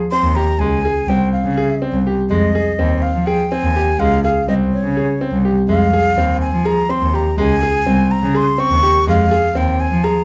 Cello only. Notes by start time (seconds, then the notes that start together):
0.23 D#2
0.59 C#2
1.07 C2
1.44 C#3
1.93 C2
2.29 F2
2.79 D#2
3.15 F3
3.63 D#2
3.99 C#2
4.47 C2
4.83 C#3
5.32 C2
5.68 F2
6.16 D#2
6.53 F3
7.01 D#2
7.38 C#2
7.86 C2
8.22 C#3
8.70 D#2
9.07 F2
9.54 D#2
9.91 F3